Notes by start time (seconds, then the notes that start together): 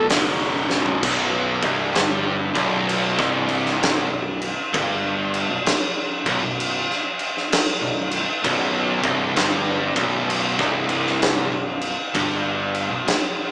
Already playing: B1 F#2 B2
0.09 F#1 B1 F#2 B2, snare, open hi-hat
0.70 snare
0.86 floor tom
1.03 B0 B1, kick, crash
1.62 C1 C2, kick, crash
1.95 G1 G2, snare, crash
2.54 B0 B1, kick, crash
2.89 crash
3.17 C1 C2, kick, snare
3.49 crash
3.66 snare
3.83 snare, crash
4.11 B0 B1
4.42 crash
4.74 G1 G2, kick, crash
5.34 crash
5.50 B0 B1
5.66 muted distorted electric guitar stroke, muted fingered electric bass stroke, snare, crash
6.26 B0 B1, kick, crash
6.43 B0 B1
6.60 crash
6.90 snare
7.19 crash
7.37 snare
7.52 snare, crash
7.81 B0 B1
8.11 crash
8.44 B0 B1, kick, crash
9.03 C1 C2, kick, crash
9.36 G1 G2, snare, crash
9.96 B0 B1, kick, crash
10.30 crash
10.58 C1 C2, kick, snare
10.89 crash
11.06 snare
11.22 snare, crash
11.52 B0 B1
11.81 crash
12.15 G1 G2, kick, crash
12.75 crash
12.90 B0 B1
13.07 muted fingered electric bass stroke, muted distorted electric guitar stroke, snare, crash